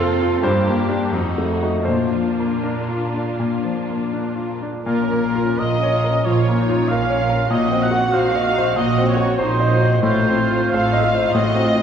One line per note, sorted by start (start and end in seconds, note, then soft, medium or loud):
0.00 0.38 F2 medium
0.00 0.43 F2 medium
0.00 0.46 C3 soft
0.00 0.40 C4 medium
0.00 0.45 C4 soft
0.00 0.13 F4 soft
0.00 0.44 F4 medium
0.00 0.40 A4 medium
0.00 0.34 A4 soft
0.00 0.40 F5 medium
0.00 0.46 G5 medium
0.22 0.44 F4 soft
0.41 1.10 G2 soft
0.41 1.11 G2 soft
0.41 1.11 A#3 soft
0.41 1.11 D4 medium
0.41 1.11 G4 soft
0.41 1.82 C5 medium
0.66 1.03 A#3 soft
0.89 1.10 D4 soft
0.89 1.10 G4 soft
1.11 1.83 F2 soft
1.11 1.84 F2 soft
1.11 1.86 A3 soft
1.11 1.86 D#4 soft
1.11 1.85 F#4 soft
1.38 1.76 A3 soft
1.62 1.84 D#4 soft
1.62 1.84 F#4 soft
1.84 4.65 A#2 soft
1.84 4.61 A#3 soft
1.84 4.60 D4 soft
1.84 4.61 F4 soft
1.84 2.59 C5 soft
1.88 3.37 A#2 soft
2.15 2.55 F3 soft
2.39 2.80 A#3 soft
2.63 3.05 D4 soft
2.63 4.08 A#4 soft
2.89 3.30 F4 soft
3.14 3.54 D4 soft
3.39 4.82 A#2 soft
3.65 4.03 F3 soft
3.90 4.28 A#3 soft
4.13 4.53 D4 soft
4.36 4.76 F4 soft
4.63 4.86 D4 soft
4.85 5.50 A#1 medium
4.85 5.50 A#2 soft
4.85 6.21 A#2 medium
4.85 5.02 F4 soft
4.85 5.60 A#4 medium
4.85 5.55 A#4 medium
5.04 5.22 C#4 soft
5.11 5.50 A#3 soft
5.22 5.41 F4 soft
5.35 5.73 F4 soft
5.42 5.60 C#4 soft
5.59 6.18 A#1 soft
5.59 6.18 A#2 soft
5.59 5.76 F4 soft
5.59 5.96 A#4 soft
5.59 6.27 D#5 medium
5.59 6.24 D#5 medium
5.78 5.94 C#4 soft
5.83 6.17 C#5 soft
5.94 6.10 F4 soft
6.04 6.38 A#4 soft
6.11 6.26 C#4 soft
6.25 6.81 A#1 medium
6.25 6.82 A#2 soft
6.25 6.60 F3 soft
6.25 6.55 F4 soft
6.25 6.41 F4 soft
6.25 6.90 C#5 medium
6.25 6.88 C#5 soft
6.42 6.58 C#4 soft
6.49 6.82 A#3 soft
6.57 6.89 D#4 soft
6.57 6.74 F4 soft
6.70 7.02 F4 soft
6.74 6.89 C#4 soft
6.88 7.44 A#1 medium
6.88 7.44 A#2 soft
6.88 7.21 C#4 soft
6.88 7.04 F4 soft
6.88 7.23 A#4 soft
6.88 7.50 F5 medium
6.88 7.52 F5 medium
7.05 7.20 C#4 soft
7.10 7.43 C#5 soft
7.19 7.35 F4 soft
7.19 7.51 F4 soft
7.29 7.51 A#4 soft
7.35 7.51 C#4 soft
7.50 8.07 A#1 soft
7.50 8.74 A#2 medium
7.50 8.08 A#2 medium
7.50 7.65 D#4 soft
7.50 9.36 F#4 medium
7.50 7.84 D#5 medium
7.50 7.83 D#5 medium
7.66 7.83 C4 soft
7.72 8.06 C4 soft
7.81 8.00 D#4 soft
7.81 8.14 F#5 medium
7.91 8.27 F#4 soft
7.99 8.15 C4 soft
8.12 8.70 A#1 medium
8.12 8.71 A#2 soft
8.12 8.29 D#4 soft
8.12 8.48 C5 soft
8.12 8.78 F5 medium
8.31 8.47 C4 soft
8.36 8.69 D#5 soft
8.47 8.63 D#4 soft
8.58 8.91 C5 soft
8.63 8.78 C4 soft
8.76 9.33 A#1 medium
8.76 9.97 A#2 soft
8.76 9.33 A#2 medium
8.76 8.92 D#4 soft
8.76 9.08 D#5 medium
8.92 9.08 C4 soft
8.98 9.31 C4 soft
9.09 9.25 D#4 soft
9.09 9.40 C#5 medium
9.17 9.51 F#4 soft
9.25 9.40 C4 soft
9.39 9.95 A#1 medium
9.39 9.95 A#2 medium
9.39 9.71 D#4 soft
9.39 9.55 D#4 soft
9.39 9.72 C5 soft
9.39 10.00 C5 medium
9.57 9.72 C4 soft
9.57 9.93 D#5 soft
9.72 9.87 D#4 soft
9.72 10.03 F#4 soft
9.82 10.03 C5 soft
9.87 10.02 C4 soft
10.01 10.63 A1 medium
10.01 11.29 A2 medium
10.01 10.64 A2 medium
10.01 10.71 F4 medium
10.01 10.19 F4 soft
10.01 10.72 C5 medium
10.01 10.69 C5 medium
10.20 10.37 D#4 soft
10.29 10.64 C4 soft
10.40 10.56 F4 soft
10.51 10.85 F4 soft
10.58 10.73 D#4 soft
10.71 11.26 A1 medium
10.71 11.26 A2 medium
10.71 10.88 F4 soft
10.71 11.04 A4 medium
10.71 11.06 C5 soft
10.71 11.11 F5 medium
10.71 11.34 F5 medium
10.90 11.04 D#4 soft
10.90 11.25 D#5 soft
11.04 11.33 F4 soft
11.04 11.19 F4 soft
11.15 11.46 C5 soft
11.21 11.34 D#4 soft
11.33 11.82 A1 medium
11.33 11.82 A2 medium
11.33 11.49 F4 soft
11.33 11.63 F#4 medium
11.33 11.82 D#5 medium
11.52 11.82 C4 soft
11.52 11.65 D#4 soft
11.64 11.82 F4 medium
11.64 11.79 F4 soft
11.76 11.82 F4 soft